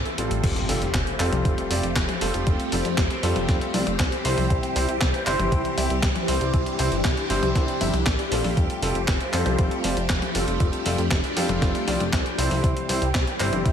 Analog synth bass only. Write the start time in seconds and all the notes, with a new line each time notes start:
0.18 A1
0.31 A1
0.43 F1
0.69 F1
0.81 F1
0.94 F1
1.19 F2
1.32 C2
1.45 F1
1.70 F1
1.83 F1
1.96 F1
2.21 F1
2.34 F1
2.47 F1
2.72 F1
2.85 F2
2.98 F1
3.23 F2
3.36 F1
3.49 F1
3.74 C2
3.87 F1
3.99 C2
4.25 C2
4.38 C2
4.50 C2
4.76 C2
4.88 C2
5.01 C2
5.27 G1
5.39 G1
5.52 C2
5.78 C2
5.90 C2
6.03 C2
6.28 C2
6.41 C2
6.54 C2
6.79 C2
6.92 G1
7.05 C2
7.30 G1
7.43 C2
7.55 C2
7.81 G1
7.93 C2
8.06 A#1
8.31 A#1
8.44 A#1
8.57 F1
8.82 F1
8.95 F1
9.08 F1
9.33 F2
9.46 C2
9.59 F1
9.84 F1
9.97 F1
10.10 F1
10.35 F1
10.48 F1
10.60 F1
10.86 F1
10.98 F2
11.11 F1
11.37 F2
11.49 F1
11.62 F1
11.87 C2
12.00 F1
12.13 C2
12.38 C2
12.51 C2
12.64 C2
12.89 C2
13.02 C2
13.15 C2
13.40 G1
13.53 G1
13.65 C2